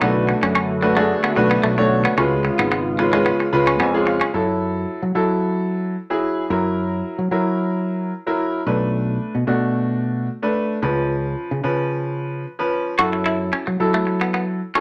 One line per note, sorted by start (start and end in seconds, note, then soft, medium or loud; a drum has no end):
0.01 0.32 B1 loud
0.01 2.16 D3 medium
0.01 0.69 A3 medium
0.01 2.16 A3 medium
0.01 0.12 B3 medium
0.01 2.16 B3 medium
0.01 0.70 D4 medium
0.01 2.16 F#4 medium
0.01 0.70 F#4 medium
0.01 0.70 B4 medium
0.29 muted clean electric guitar stroke soft
0.43 1.13 F#2 medium
0.43 0.52 C#4 medium
0.55 0.66 C#4 medium
0.82 0.94 A3 medium
0.82 0.94 D4 medium
0.82 0.94 F#4 medium
0.82 0.95 B4 medium
0.82 muted clean electric guitar stroke soft
0.97 1.06 A3 medium
0.97 1.30 A3 medium
0.97 1.30 D4 medium
0.97 1.30 F#4 medium
0.97 1.30 G#4 loud
1.24 1.33 B3 medium
1.36 1.57 B1 medium
1.36 1.71 A3 medium
1.36 1.71 D4 medium
1.36 1.71 F#4 medium
1.36 1.71 B4 loud
1.36 muted clean electric guitar stroke soft
1.51 1.60 B3 medium
1.64 2.04 B1 loud
1.64 1.74 A3 medium
1.78 2.11 A3 medium
1.78 2.11 D4 medium
1.78 2.11 F#4 medium
1.78 2.11 C#5 loud
1.78 muted clean electric guitar stroke soft
2.05 2.15 B3 medium
2.17 2.49 C#2 loud
2.17 4.32 C#3 medium
2.17 2.86 G#3 medium
2.17 4.32 G#3 medium
2.17 4.32 B3 medium
2.17 2.86 C#4 medium
2.17 2.28 C#4 medium
2.17 4.32 F4 medium
2.17 2.86 F4 medium
2.17 2.86 B4 medium
2.45 muted clean electric guitar stroke soft
2.59 3.29 G#1 medium
2.59 2.69 B3 medium
2.72 2.82 B3 medium
2.98 3.10 G#3 medium
2.98 3.11 C#4 medium
2.98 3.11 F4 medium
2.98 3.11 B4 medium
2.98 muted clean electric guitar stroke soft
3.13 3.46 G#3 medium
3.13 3.23 G#3 medium
3.13 3.46 C#4 medium
3.13 3.46 F4 medium
3.13 3.46 B4 loud
3.26 3.37 B3 medium
3.40 muted clean electric guitar stroke soft
3.52 3.80 C#2 medium
3.52 3.87 G#3 medium
3.52 3.87 C#4 medium
3.52 3.87 F4 medium
3.52 3.87 B4 loud
3.52 3.78 B5 medium
3.67 3.77 C#4 medium
3.80 4.20 F2 loud
3.80 3.91 B3 medium
3.80 4.05 G#5 medium
3.94 4.27 G#3 medium
3.94 4.27 C#4 medium
3.94 4.27 F4 medium
3.94 4.28 G#4 medium
4.07 4.32 F5 medium
4.07 muted clean electric guitar stroke soft
4.21 4.31 C#4 medium
4.34 4.85 F#2 loud
4.34 5.02 F#3 medium
4.34 5.02 E4 medium
4.34 5.02 A4 medium
5.03 5.12 F#3 medium
5.15 5.93 F#3 medium
5.15 5.96 F#3 medium
5.15 5.94 E4 medium
5.15 5.94 A4 medium
6.10 6.43 F#3 medium
6.10 6.44 E4 medium
6.10 6.44 G#4 medium
6.50 7.01 F#2 loud
6.50 7.18 F#3 medium
6.50 7.18 E4 medium
6.50 7.18 A#4 medium
7.19 7.28 F#3 medium
7.31 8.12 F#3 medium
7.31 8.10 F#3 medium
7.31 8.10 E4 medium
7.31 8.10 A#4 medium
8.26 8.60 F#3 medium
8.26 8.60 E4 medium
8.26 8.60 A#4 medium
8.66 9.17 B1 loud
8.66 9.34 A3 medium
8.66 9.34 D4 medium
8.66 9.35 B4 medium
9.35 9.44 B2 medium
9.47 10.28 B2 medium
9.47 10.26 A3 medium
9.47 10.26 D4 medium
9.47 10.26 F#4 medium
10.42 10.76 A3 medium
10.42 10.76 D4 medium
10.42 10.76 B4 medium
10.82 11.34 C#2 loud
10.82 11.50 F3 medium
10.82 11.51 C#4 medium
10.82 11.51 B4 medium
11.51 11.61 C#3 medium
11.63 12.44 C#3 medium
11.63 12.42 F3 medium
11.63 12.42 C#4 medium
11.63 12.42 B4 medium
12.59 12.92 F3 medium
12.59 12.92 C#4 medium
12.59 12.92 B4 medium
12.99 13.50 F#2 loud
12.99 13.67 F#3 medium
12.99 13.67 E4 medium
12.99 13.09 F#4 medium
12.99 13.67 A4 medium
13.13 muted clean electric guitar stroke soft
13.26 13.36 E4 medium
13.53 13.64 C#4 medium
13.67 13.77 F#3 medium
13.67 muted clean electric guitar stroke soft
13.80 14.58 F#3 medium
13.80 14.60 F#3 loud
13.80 14.58 E4 medium
13.80 14.59 A4 medium
13.94 14.04 A3 medium
14.07 muted clean electric guitar stroke soft
14.21 14.31 B3 medium
14.34 14.45 B3 medium
14.75 14.80 F#3 medium
14.75 14.80 C#4 medium
14.75 14.80 E4 medium
14.75 14.80 A4 medium